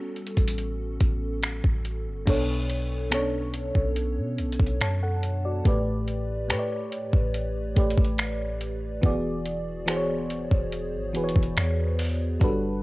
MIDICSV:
0, 0, Header, 1, 4, 480
1, 0, Start_track
1, 0, Key_signature, 2, "minor"
1, 0, Tempo, 845070
1, 1292, Time_signature, 4, 2, 24, 8
1, 7287, End_track
2, 0, Start_track
2, 0, Title_t, "FM electric piano"
2, 0, Program_c, 0, 5
2, 0, Control_c, 0, 64, 127
2, 0, Note_on_c, 0, 55, 55
2, 0, Note_on_c, 0, 59, 51
2, 0, Note_on_c, 0, 61, 70
2, 0, Note_on_c, 0, 66, 62
2, 0, Note_on_c, 0, 69, 90
2, 785, Note_off_c, 0, 69, 0
2, 792, Note_off_c, 0, 61, 0
2, 1281, Note_on_c, 0, 47, 85
2, 1287, Note_off_c, 0, 59, 0
2, 1287, Note_on_c, 0, 59, 79
2, 1293, Note_on_c, 0, 62, 78
2, 1298, Control_c, 0, 64, 0
2, 1300, Note_on_c, 0, 69, 79
2, 1301, Note_off_c, 0, 66, 0
2, 1302, Note_off_c, 0, 55, 0
2, 1305, Note_on_c, 0, 73, 94
2, 1384, Control_c, 0, 64, 127
2, 1605, Note_off_c, 0, 47, 0
2, 1608, Note_off_c, 0, 59, 0
2, 1611, Note_off_c, 0, 62, 0
2, 1614, Note_off_c, 0, 69, 0
2, 1617, Note_off_c, 0, 73, 0
2, 1762, Note_on_c, 0, 47, 86
2, 1767, Note_on_c, 0, 59, 80
2, 1774, Note_on_c, 0, 61, 61
2, 1779, Note_on_c, 0, 69, 80
2, 1785, Note_on_c, 0, 73, 95
2, 1810, Note_off_c, 0, 61, 0
2, 1810, Note_on_c, 0, 62, 74
2, 2245, Note_off_c, 0, 47, 0
2, 2247, Note_off_c, 0, 59, 0
2, 2253, Note_off_c, 0, 69, 0
2, 2256, Note_off_c, 0, 73, 0
2, 2269, Note_off_c, 0, 62, 0
2, 2734, Note_on_c, 0, 81, 62
2, 2737, Note_on_c, 0, 73, 56
2, 2847, Note_off_c, 0, 81, 0
2, 2848, Note_off_c, 0, 73, 0
2, 2856, Note_on_c, 0, 78, 70
2, 2859, Note_on_c, 0, 69, 60
2, 3082, Note_off_c, 0, 78, 0
2, 3083, Note_off_c, 0, 69, 0
2, 3096, Note_on_c, 0, 74, 67
2, 3099, Note_on_c, 0, 66, 55
2, 3203, Note_on_c, 0, 45, 85
2, 3209, Note_on_c, 0, 57, 78
2, 3215, Note_on_c, 0, 67, 82
2, 3218, Control_c, 0, 64, 0
2, 3220, Note_off_c, 0, 74, 0
2, 3221, Note_on_c, 0, 71, 79
2, 3227, Note_on_c, 0, 74, 95
2, 3324, Note_off_c, 0, 66, 0
2, 3325, Control_c, 0, 64, 127
2, 3526, Note_off_c, 0, 45, 0
2, 3529, Note_off_c, 0, 57, 0
2, 3532, Note_off_c, 0, 67, 0
2, 3535, Note_off_c, 0, 71, 0
2, 3538, Note_off_c, 0, 74, 0
2, 3682, Note_on_c, 0, 45, 84
2, 3688, Note_on_c, 0, 57, 78
2, 3694, Note_on_c, 0, 67, 80
2, 3700, Note_on_c, 0, 71, 81
2, 3706, Note_on_c, 0, 73, 78
2, 3735, Note_off_c, 0, 73, 0
2, 3743, Note_on_c, 0, 74, 92
2, 4165, Note_off_c, 0, 45, 0
2, 4168, Note_off_c, 0, 57, 0
2, 4171, Note_off_c, 0, 67, 0
2, 4174, Note_off_c, 0, 71, 0
2, 4195, Note_off_c, 0, 74, 0
2, 4402, Note_on_c, 0, 45, 76
2, 4407, Note_on_c, 0, 57, 72
2, 4414, Note_on_c, 0, 67, 73
2, 4420, Note_on_c, 0, 71, 72
2, 4426, Note_on_c, 0, 74, 83
2, 4885, Note_off_c, 0, 45, 0
2, 4887, Note_off_c, 0, 57, 0
2, 4891, Note_off_c, 0, 67, 0
2, 4894, Note_off_c, 0, 71, 0
2, 4897, Note_off_c, 0, 74, 0
2, 5121, Note_on_c, 0, 52, 92
2, 5127, Note_on_c, 0, 59, 83
2, 5132, Note_on_c, 0, 66, 81
2, 5139, Control_c, 0, 64, 0
2, 5139, Note_on_c, 0, 68, 84
2, 5145, Note_on_c, 0, 74, 104
2, 5239, Control_c, 0, 64, 127
2, 5445, Note_off_c, 0, 52, 0
2, 5448, Note_off_c, 0, 59, 0
2, 5451, Note_off_c, 0, 66, 0
2, 5454, Note_off_c, 0, 68, 0
2, 5457, Note_off_c, 0, 74, 0
2, 5600, Note_on_c, 0, 52, 86
2, 5606, Note_on_c, 0, 59, 79
2, 5612, Note_on_c, 0, 66, 77
2, 5618, Note_on_c, 0, 68, 80
2, 5623, Note_on_c, 0, 72, 73
2, 5654, Note_off_c, 0, 72, 0
2, 5660, Note_on_c, 0, 73, 94
2, 6084, Note_off_c, 0, 52, 0
2, 6086, Note_off_c, 0, 59, 0
2, 6090, Note_off_c, 0, 66, 0
2, 6093, Note_off_c, 0, 68, 0
2, 6114, Note_off_c, 0, 73, 0
2, 6322, Note_on_c, 0, 52, 75
2, 6329, Note_on_c, 0, 59, 72
2, 6334, Note_on_c, 0, 66, 69
2, 6341, Note_on_c, 0, 68, 75
2, 6346, Note_on_c, 0, 71, 66
2, 6376, Note_off_c, 0, 71, 0
2, 6383, Note_on_c, 0, 73, 89
2, 6805, Note_off_c, 0, 52, 0
2, 6808, Note_off_c, 0, 59, 0
2, 6811, Note_off_c, 0, 66, 0
2, 6814, Note_off_c, 0, 68, 0
2, 6835, Note_off_c, 0, 73, 0
2, 7042, Note_on_c, 0, 55, 91
2, 7048, Note_on_c, 0, 62, 84
2, 7054, Note_on_c, 0, 66, 83
2, 7059, Control_c, 0, 64, 0
2, 7060, Note_on_c, 0, 69, 83
2, 7065, Note_on_c, 0, 71, 101
2, 7146, Control_c, 0, 64, 127
2, 7287, Note_off_c, 0, 55, 0
2, 7287, Note_off_c, 0, 62, 0
2, 7287, Note_off_c, 0, 66, 0
2, 7287, Note_off_c, 0, 69, 0
2, 7287, Note_off_c, 0, 71, 0
2, 7287, End_track
3, 0, Start_track
3, 0, Title_t, "808-style bass"
3, 0, Program_c, 1, 38
3, 212, Note_on_c, 1, 33, 91
3, 557, Note_off_c, 1, 33, 0
3, 573, Note_on_c, 1, 33, 107
3, 918, Note_off_c, 1, 33, 0
3, 933, Note_on_c, 1, 33, 102
3, 1172, Note_on_c, 1, 31, 98
3, 1181, Note_off_c, 1, 33, 0
3, 1286, Note_off_c, 1, 31, 0
3, 1291, Note_on_c, 1, 35, 105
3, 2109, Note_off_c, 1, 35, 0
3, 2132, Note_on_c, 1, 35, 104
3, 2372, Note_on_c, 1, 47, 95
3, 2380, Note_off_c, 1, 35, 0
3, 2491, Note_on_c, 1, 35, 102
3, 2500, Note_off_c, 1, 47, 0
3, 2605, Note_off_c, 1, 35, 0
3, 2612, Note_on_c, 1, 35, 101
3, 2727, Note_off_c, 1, 35, 0
3, 2733, Note_on_c, 1, 42, 103
3, 3193, Note_off_c, 1, 42, 0
3, 3212, Note_on_c, 1, 33, 102
3, 3692, Note_on_c, 1, 45, 104
3, 3701, Note_off_c, 1, 33, 0
3, 4034, Note_off_c, 1, 45, 0
3, 4052, Note_on_c, 1, 33, 92
3, 4398, Note_off_c, 1, 33, 0
3, 4413, Note_on_c, 1, 33, 113
3, 4528, Note_off_c, 1, 33, 0
3, 4532, Note_on_c, 1, 33, 100
3, 5109, Note_off_c, 1, 33, 0
3, 5132, Note_on_c, 1, 28, 107
3, 5949, Note_off_c, 1, 28, 0
3, 5973, Note_on_c, 1, 28, 100
3, 6213, Note_on_c, 1, 32, 95
3, 6221, Note_off_c, 1, 28, 0
3, 6332, Note_on_c, 1, 28, 105
3, 6341, Note_off_c, 1, 32, 0
3, 6446, Note_off_c, 1, 28, 0
3, 6452, Note_on_c, 1, 28, 101
3, 6567, Note_off_c, 1, 28, 0
3, 6572, Note_on_c, 1, 40, 104
3, 7032, Note_off_c, 1, 40, 0
3, 7052, Note_on_c, 1, 31, 103
3, 7287, Note_off_c, 1, 31, 0
3, 7287, End_track
4, 0, Start_track
4, 0, Title_t, "Drums"
4, 92, Note_on_c, 9, 42, 47
4, 148, Note_off_c, 9, 42, 0
4, 151, Note_on_c, 9, 42, 58
4, 208, Note_off_c, 9, 42, 0
4, 210, Note_on_c, 9, 42, 67
4, 211, Note_on_c, 9, 36, 90
4, 267, Note_off_c, 9, 42, 0
4, 268, Note_off_c, 9, 36, 0
4, 271, Note_on_c, 9, 42, 79
4, 328, Note_off_c, 9, 42, 0
4, 330, Note_on_c, 9, 42, 78
4, 387, Note_off_c, 9, 42, 0
4, 571, Note_on_c, 9, 42, 70
4, 572, Note_on_c, 9, 36, 89
4, 627, Note_off_c, 9, 42, 0
4, 629, Note_off_c, 9, 36, 0
4, 810, Note_on_c, 9, 42, 59
4, 815, Note_on_c, 9, 26, 115
4, 867, Note_off_c, 9, 42, 0
4, 872, Note_off_c, 9, 26, 0
4, 932, Note_on_c, 9, 36, 95
4, 989, Note_off_c, 9, 36, 0
4, 1050, Note_on_c, 9, 42, 71
4, 1107, Note_off_c, 9, 42, 0
4, 1290, Note_on_c, 9, 42, 73
4, 1290, Note_on_c, 9, 49, 89
4, 1291, Note_on_c, 9, 36, 109
4, 1347, Note_off_c, 9, 42, 0
4, 1347, Note_off_c, 9, 49, 0
4, 1348, Note_off_c, 9, 36, 0
4, 1531, Note_on_c, 9, 42, 61
4, 1588, Note_off_c, 9, 42, 0
4, 1770, Note_on_c, 9, 42, 71
4, 1772, Note_on_c, 9, 26, 109
4, 1826, Note_off_c, 9, 42, 0
4, 1829, Note_off_c, 9, 26, 0
4, 2009, Note_on_c, 9, 42, 75
4, 2066, Note_off_c, 9, 42, 0
4, 2131, Note_on_c, 9, 36, 86
4, 2188, Note_off_c, 9, 36, 0
4, 2250, Note_on_c, 9, 42, 82
4, 2307, Note_off_c, 9, 42, 0
4, 2491, Note_on_c, 9, 42, 63
4, 2547, Note_off_c, 9, 42, 0
4, 2570, Note_on_c, 9, 42, 60
4, 2611, Note_on_c, 9, 36, 86
4, 2627, Note_off_c, 9, 42, 0
4, 2650, Note_on_c, 9, 42, 60
4, 2668, Note_off_c, 9, 36, 0
4, 2707, Note_off_c, 9, 42, 0
4, 2730, Note_on_c, 9, 42, 63
4, 2735, Note_on_c, 9, 26, 112
4, 2787, Note_off_c, 9, 42, 0
4, 2792, Note_off_c, 9, 26, 0
4, 2971, Note_on_c, 9, 42, 75
4, 3028, Note_off_c, 9, 42, 0
4, 3211, Note_on_c, 9, 36, 119
4, 3211, Note_on_c, 9, 42, 70
4, 3267, Note_off_c, 9, 42, 0
4, 3268, Note_off_c, 9, 36, 0
4, 3451, Note_on_c, 9, 42, 62
4, 3508, Note_off_c, 9, 42, 0
4, 3691, Note_on_c, 9, 42, 71
4, 3693, Note_on_c, 9, 26, 102
4, 3748, Note_off_c, 9, 42, 0
4, 3750, Note_off_c, 9, 26, 0
4, 3931, Note_on_c, 9, 42, 79
4, 3988, Note_off_c, 9, 42, 0
4, 4051, Note_on_c, 9, 36, 86
4, 4108, Note_off_c, 9, 36, 0
4, 4171, Note_on_c, 9, 42, 82
4, 4228, Note_off_c, 9, 42, 0
4, 4411, Note_on_c, 9, 42, 63
4, 4412, Note_on_c, 9, 36, 85
4, 4468, Note_off_c, 9, 42, 0
4, 4469, Note_off_c, 9, 36, 0
4, 4491, Note_on_c, 9, 42, 62
4, 4531, Note_on_c, 9, 36, 91
4, 4547, Note_off_c, 9, 42, 0
4, 4571, Note_on_c, 9, 42, 60
4, 4588, Note_off_c, 9, 36, 0
4, 4627, Note_off_c, 9, 42, 0
4, 4649, Note_on_c, 9, 42, 66
4, 4653, Note_on_c, 9, 26, 108
4, 4705, Note_off_c, 9, 42, 0
4, 4710, Note_off_c, 9, 26, 0
4, 4890, Note_on_c, 9, 42, 74
4, 4947, Note_off_c, 9, 42, 0
4, 5130, Note_on_c, 9, 36, 125
4, 5130, Note_on_c, 9, 42, 70
4, 5187, Note_off_c, 9, 36, 0
4, 5187, Note_off_c, 9, 42, 0
4, 5371, Note_on_c, 9, 42, 59
4, 5428, Note_off_c, 9, 42, 0
4, 5610, Note_on_c, 9, 42, 73
4, 5613, Note_on_c, 9, 26, 104
4, 5667, Note_off_c, 9, 42, 0
4, 5669, Note_off_c, 9, 26, 0
4, 5850, Note_on_c, 9, 42, 80
4, 5907, Note_off_c, 9, 42, 0
4, 5971, Note_on_c, 9, 36, 90
4, 6028, Note_off_c, 9, 36, 0
4, 6091, Note_on_c, 9, 42, 79
4, 6148, Note_off_c, 9, 42, 0
4, 6332, Note_on_c, 9, 42, 61
4, 6388, Note_off_c, 9, 42, 0
4, 6412, Note_on_c, 9, 42, 65
4, 6451, Note_on_c, 9, 36, 90
4, 6468, Note_off_c, 9, 42, 0
4, 6491, Note_on_c, 9, 42, 59
4, 6508, Note_off_c, 9, 36, 0
4, 6547, Note_off_c, 9, 42, 0
4, 6570, Note_on_c, 9, 42, 62
4, 6575, Note_on_c, 9, 26, 115
4, 6627, Note_off_c, 9, 42, 0
4, 6632, Note_off_c, 9, 26, 0
4, 6810, Note_on_c, 9, 46, 75
4, 6867, Note_off_c, 9, 46, 0
4, 7050, Note_on_c, 9, 36, 121
4, 7050, Note_on_c, 9, 42, 73
4, 7107, Note_off_c, 9, 36, 0
4, 7107, Note_off_c, 9, 42, 0
4, 7287, End_track
0, 0, End_of_file